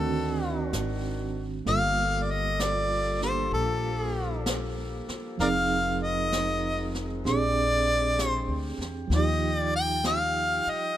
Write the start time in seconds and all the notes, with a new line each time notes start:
Already playing: D2 D#3 C4 D4 F#4 A4
0.44 G4
0.73 G#1, brush sweep, snare, hi-hat pedal
1.65 G1 F3 G3 A#3 F4 G4 A4 F5, brush sweep, snare
2.23 D5
2.31 D#5
2.60 D5, brush sweep, snare, hi-hat pedal
3.21 A#3 D4 G4 C5, snare
3.52 A#1 A4, brush sweep
4.46 brush sweep, snare, hi-hat pedal
5.09 muted upright bass stroke, snare
5.38 F1 D#3 F3 G#3 C4 D#4 F4 A#4 D5 F5, brush sweep, snare
5.43 G#4
6.04 D#5
6.32 brush sweep, snare, hi-hat pedal
6.94 snare
7.25 A#1 D3 C4 D4 G4 G#4 D5 G5, brush sweep, snare
8.19 brush sweep, snare, hi-hat pedal
8.28 C5
8.48 D2
8.78 E2, snare
9.08 D#2 F3 G3 F4, brush sweep, snare
9.15 D#4 G4 D#5
9.57 D5
9.76 G5
10.04 F5, brush sweep, snare, hi-hat pedal
10.66 D#5, muted upright bass stroke